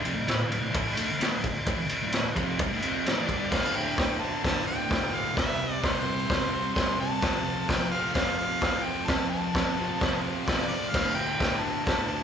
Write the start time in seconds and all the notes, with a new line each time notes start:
0.03 F2 C3, ride
0.15 D2 A2
0.27 D2 A2, snare, ride
0.39 muted distorted electric guitar stroke
0.50 D2 A2, ride
0.61 D2 A2
0.72 A2 E3 A3, kick, ride
0.95 D3 A3, ride
1.06 muted distorted electric guitar stroke
1.19 D2 A2, snare, ride
1.31 D2 A2
1.44 muted distorted electric guitar stroke, kick, ride
1.66 A2 E3, kick, ride
1.78 muted distorted electric guitar stroke
1.89 ride
2.02 D2 A2
2.12 snare, ride
2.25 muted distorted electric guitar stroke
2.35 F2 C3 F3, kick, ride
2.59 C3 G3, kick, ride
2.71 D2 A2
2.82 F2 C3 F3, ride
3.06 D2 A2 D5, snare, ride
3.18 A2 E3
3.28 G2 D3 G3 D5, kick, ride
3.51 D2 A2 D3 F5, kick, snare, crash
3.74 A2 D3 G5
3.97 D2 A2 D3 G5, kick, snare, open hi-hat
4.19 D2 A2 D3 A5
4.42 D2 A2 D3 A5, kick, open hi-hat
4.46 snare
4.64 A2 D3 G5
4.87 D2 A2 D3, kick
4.92 snare, open hi-hat
5.11 D2 A2 D3
5.15 F5
5.33 C3 G3, kick
5.37 C4 E5, snare, open hi-hat
5.58 G3 C4
5.81 C3 G3 C4 C5, kick, snare, open hi-hat
6.04 G3 C4
6.08 C3
6.26 C3 G3 C4, kick, open hi-hat
6.31 snare
6.50 C4
6.54 G3
6.74 C3 G3 C4 C6, kick, open hi-hat
6.78 snare
6.97 C3 G3 C4 A5
7.19 F2 C3 F3, kick, snare, open hi-hat
7.43 C3 F3
7.67 F2 C3 F3 G5, kick, snare, open hi-hat
7.91 F2 C3 F3 F5
8.13 F2 C3 F3 F5, kick, snare, open hi-hat
8.38 C3 F3 F5
8.60 F2 C3 F3, kick, snare, open hi-hat
8.84 F2 C3 F3 G5
9.07 F2 C3 F3 A5, kick, snare, open hi-hat
9.30 C3 F3 A5
9.54 F2 C3 F3, kick, snare, open hi-hat
9.76 C3 F3
9.80 F2
9.99 F2 C3 F3, kick, snare, open hi-hat
10.22 C3 F3
10.45 F2 C3 D5, kick, snare, open hi-hat
10.50 F3
10.68 C3 F3 D5
10.73 F2
10.90 D2 F5
10.94 A2 D3, kick, snare, crash
11.15 D3 G5
11.20 A2
11.38 D2 A2 D3, kick, snare, open hi-hat
11.61 A2 D3 A5
11.65 D2
11.84 D2 A2 D3 A5, kick, open hi-hat
11.88 snare
12.07 A2 D3 A5